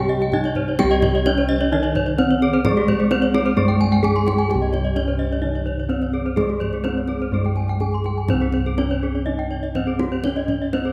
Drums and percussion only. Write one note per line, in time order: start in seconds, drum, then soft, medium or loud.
0.20 kendang slap soft
0.32 kendang low medium
0.44 kendang slap soft
0.55 kendang low medium
0.79 kendang high medium
0.79 kendang low loud
1.02 kendang high medium
1.02 kendang low medium
1.26 kendang high medium
1.38 kendang slap soft
1.84 kendang slap soft
1.95 kendang low medium
2.18 kendang low medium
2.31 kendang slap soft
2.65 kendang high medium
2.65 kendang low medium
2.88 kendang low medium
3.11 kendang high medium
3.23 kendang slap soft
3.34 kendang high medium
3.69 kendang slap soft
3.81 kendang low medium
4.04 kendang low medium
4.16 kendang slap soft
4.28 kendang high soft
4.51 kendang high soft
4.51 kendang low soft
4.74 kendang high soft
4.74 kendang low soft
4.85 kendang slap soft
4.96 kendang high soft
5.09 kendang slap soft
5.55 kendang slap soft
5.67 kendang low soft
5.90 kendang low soft
6.02 kendang slap soft
6.37 kendang high soft
6.37 kendang low soft
6.50 kendang slap soft
6.61 kendang low soft
6.73 kendang slap soft
6.84 kendang high soft
7.08 kendang high soft
7.20 kendang slap soft
7.45 kendang slap soft
7.56 kendang low soft
7.68 kendang slap soft
7.80 kendang low soft
7.92 kendang slap soft
8.04 kendang high soft
8.28 kendang high soft
8.28 kendang low medium
8.41 kendang slap soft
8.52 kendang low soft
8.78 kendang high soft
8.90 kendang slap soft
9.64 kendang slap soft
9.75 kendang low medium
9.99 kendang high soft
10.24 kendang high soft
10.24 kendang low medium
10.36 kendang slap soft
10.48 kendang low soft
10.73 kendang high soft
10.85 kendang slap soft